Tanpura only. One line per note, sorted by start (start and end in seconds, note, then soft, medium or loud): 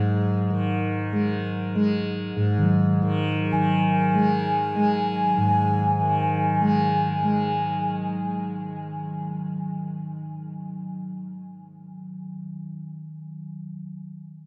0.00 2.36 G#2 medium
0.00 0.50 D#3 medium
0.00 1.12 G#3 medium
0.50 3.01 D#3 medium
1.12 1.75 G#3 medium
1.75 4.14 G#3 soft
2.36 5.37 G#2 medium
3.02 3.53 D#3 medium
3.53 6.00 D#3 medium
4.14 4.76 G#3 soft
4.76 6.61 G#3 soft
5.37 12.52 G#2 medium
6.00 13.15 D#3 soft
6.61 7.23 G#3 medium
7.23 13.55 G#3 soft